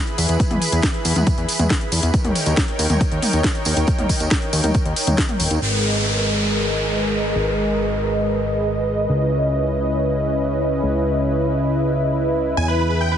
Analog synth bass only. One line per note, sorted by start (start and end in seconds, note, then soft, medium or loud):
0.18 0.26 E2 medium
0.29 0.37 E2 medium
0.51 0.59 E2 medium
0.72 0.80 E2 medium
1.05 1.13 E2 medium
1.16 1.24 E2 medium
1.38 1.46 E2 medium
1.59 1.67 E2 medium
1.92 2.00 E2 medium
2.03 2.11 E2 medium
2.25 2.33 D#2 medium
2.46 2.54 D#2 medium
2.79 2.87 D#2 medium
2.90 2.98 D#2 medium
3.12 3.20 D#2 medium
3.33 3.41 D#2 medium
3.66 3.74 D#2 medium
3.77 3.85 D#2 medium
3.99 4.06 D#2 medium
4.20 4.28 D#2 medium
4.53 4.61 D#2 medium
4.64 4.72 D#2 medium
4.86 4.93 D#2 medium
5.07 5.15 D#2 medium
5.40 5.48 D#1 medium
5.51 5.59 D#2 medium
5.62 7.33 G#1 medium
7.36 9.07 G#1 medium
9.09 10.81 C#2 medium
10.83 12.55 C#2 medium
12.57 13.18 E2 medium